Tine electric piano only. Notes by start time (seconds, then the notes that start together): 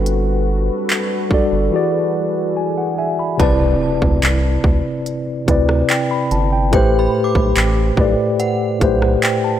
Already playing: G3 D4 F#4 A4 B4
1.30 G3 D4 F#4 A4
1.34 D5
1.71 E3 E4 F#4 G#4
1.76 D5
2.57 G#5
2.78 F#5
2.98 E5 G#5
3.19 B5
3.38 C3 C4 E4 B4
3.42 D5
5.46 C3 C4 E4 B4
5.51 D5
5.90 G5
6.11 B5
6.32 A5
6.53 G5
6.71 A2 A3 G4 B4
6.76 C5
7.96 A2 A3 G4 B4
8.01 D5
8.79 A2 A3 G4 B4
8.84 C5
9.23 G5
9.44 A5